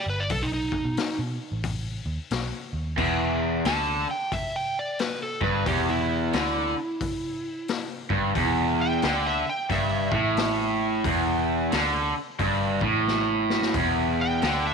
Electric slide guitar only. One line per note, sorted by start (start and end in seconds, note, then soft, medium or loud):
0.10 0.23 B4 loud
0.20 0.29 D5 loud
0.31 0.44 A4 loud
0.43 0.52 D#4 loud
0.54 1.18 D#4 medium
3.66 4.09 A5 medium
4.11 4.32 G5 medium
4.33 4.55 E5 loud
4.56 4.77 G5 medium
4.79 5.00 D5 medium
5.00 5.21 B4 medium
5.23 5.43 A4 medium
5.44 5.66 B4 medium
5.67 5.89 G4 medium
5.89 7.87 E4 medium
8.81 9.25 G5 medium
9.27 9.48 E5 medium
9.50 9.71 G5 medium
9.72 11.02 E5 loud
14.21 14.65 G5 loud
14.67 14.74 E5 medium